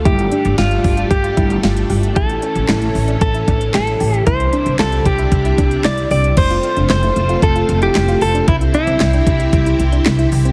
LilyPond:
<<
  \new Staff \with { instrumentName = "Clean electric guitar" } { \time 4/4 \key f \major \tempo 4 = 114 g'4 f'4 g'4 r4 | a'2 a'4 a'4 | c''4 a'8 g'4. d''8 d''8 | c''4 c''4 a'8. g'8. a'8 |
e'8 e'2. r8 | }
  \new Staff \with { instrumentName = "Synth pluck" } { \time 4/4 \key f \major e'8 d'8 g'8 r16 f'8 f'16 e'8 f'8 g'8 | e'8 cis'8 e'8 r16 d'8 e'16 d'8 e'8 g'8 | e'8 d'8 f'8 r16 e'8 e'16 d'8 e'8 g'8 | r16 f'8 d'8 e'8 f'8 f'8 e'8 f'8 d'16 |
r16 e'8 c'8 d'8 e'8 e'8 d'8 e'8 c'16 | }
  \new Staff \with { instrumentName = "String machine" } { \time 4/4 \key f \major <g a d'>1 | <e cis'>1 | <c g d' e'>1 | <a c' f'>1 |
<c e' g'>1 | }
  \new Staff \with { instrumentName = "Upright bass" } { \clef bass \time 4/4 \key f \major g,,8 r16 g,,16 g,,8 g,,8 g,,8 g,,8 g,,8 g,,8 | a,,8 r16 a,,16 a,,8 a,,8 a,,8 a,,8 a,,8 a,,8 | c,8 r16 c,16 c,8 c,8 c,8 c,8 c,8 c,8 | f,,8 r16 f,,16 f,,8 f,,8 f,,8 f,,8 f,,8 f,,8 |
c,8 r16 c,16 c,8 c,8 c,8 c,8 c,8 c,8 | }
  \new DrumStaff \with { instrumentName = "Drums" } \drummode { \time 4/4 <hh bd>16 hh16 hh16 hh16 <hh sn>16 hh16 <hho bd>16 hh16 <hh bd>16 hh16 <hh bd>16 hh16 <hh sn>16 hh16 hho16 hh16 | <hh bd>16 hh16 hh16 hh16 <hc hh sn>16 hh16 hho16 hh16 <hh bd>16 hh16 <hh bd>16 hh16 <hc hh sn>16 hh16 hho16 hh16 | <hh bd>16 hh16 hh16 hh16 <hc hh sn>16 hh16 <hh bd>16 hh16 <hh bd>16 hh16 <hh bd>16 hh16 <hc hh sn>16 hh16 hho16 hh16 | <cymc hh bd>16 hh16 hh16 hh16 <hc hh sn>16 hh16 hh16 hh16 <hh bd>16 hh16 hh16 hh16 <hc hh sn>16 hh16 hho16 hh16 |
<hh bd>16 hh16 hh16 hh16 <hc hh sn>16 hh16 <hh bd>16 hh16 <hh bd>16 hh16 hh16 hh16 <hc hh sn>16 hh16 hho16 hh16 | }
>>